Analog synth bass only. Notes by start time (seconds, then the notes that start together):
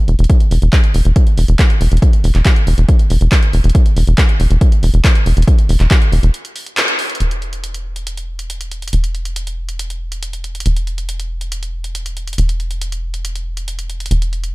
0.08 E1
0.19 E1
0.51 E1
0.62 E1
0.95 E1
1.05 E1
1.38 E1
1.49 E1
1.81 E1
1.92 E1
2.24 E1
2.35 E1
2.67 E1
2.78 E1
3.10 E1
3.21 E1
3.53 E1
3.64 E1
3.97 E1
4.07 E1
4.40 E1
4.50 E1
4.83 E1
4.94 E1
5.26 E1
5.37 E1
5.69 E1
5.80 E1
6.12 E1
6.23 E1
7.20 E1
8.93 E1
10.66 E1
12.38 E1
14.11 E1